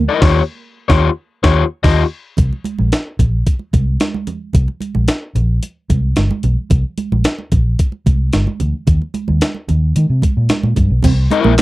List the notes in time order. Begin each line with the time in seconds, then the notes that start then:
0.09 E4 A#4 D#5
0.21 D#2 F4 G4 C#5, kick, snare, crash
0.88 D#2 F4 G4 C#5, kick, snare
1.43 D#2 F4 G4 C#5, kick, snare
1.83 D#2 F4 G4 D#5, kick, snare, crash
2.37 C2, kick, closed hi-hat, low conga
2.53 muted conga
2.64 closed hi-hat, high conga
2.79 A#1, high conga
2.92 snare, closed hi-hat
3.19 A#1, kick, closed hi-hat, low conga
3.47 kick, closed hi-hat
3.59 muted conga
3.73 C2, kick, closed hi-hat, high conga
4.00 snare, closed hi-hat, muted conga, high conga
4.14 high conga
4.27 closed hi-hat, low conga
4.53 C2, kick, closed hi-hat, muted conga, low conga
4.68 muted conga
4.80 closed hi-hat, high conga
4.95 A#1, high conga
5.08 snare, closed hi-hat, muted conga
5.35 A#1, closed hi-hat, low conga
5.63 closed hi-hat, muted conga
5.90 C2, kick, closed hi-hat, high conga
6.16 G1, snare, closed hi-hat, muted conga, high conga
6.31 muted conga, high conga
6.43 B1, closed hi-hat, low conga
6.70 C2, kick, closed hi-hat, low conga
6.98 closed hi-hat, high conga
7.12 A#1, high conga
7.24 snare, closed hi-hat, muted conga
7.38 muted conga
7.52 A#1, kick, closed hi-hat, low conga
7.79 kick, closed hi-hat, muted conga
7.92 muted conga
8.06 C2, kick, closed hi-hat, high conga
8.33 G1, snare, closed hi-hat, muted conga, high conga
8.47 high conga
8.60 D2, closed hi-hat, low conga
8.87 D#2, kick, closed hi-hat, low conga
9.02 muted conga
9.14 closed hi-hat, high conga
9.28 D#2, high conga
9.41 snare, closed hi-hat
9.54 muted conga
9.68 D#2, closed hi-hat, low conga
9.96 D#3, closed hi-hat, muted conga, high conga
10.10 C3
10.22 kick, closed hi-hat, high conga
10.37 A#2
10.49 snare, closed hi-hat, muted conga, high conga
10.63 A#2, muted conga, high conga
10.76 G2, kick, closed hi-hat, low conga
10.90 B1
11.03 C2 C4, kick, closed hi-hat, crash, low conga
11.30 E4 A#4 E5, muted clean electric guitar stroke, closed hi-hat, high conga
11.44 A#1 A#3, high conga
11.58 snare, clap, closed hi-hat, muted conga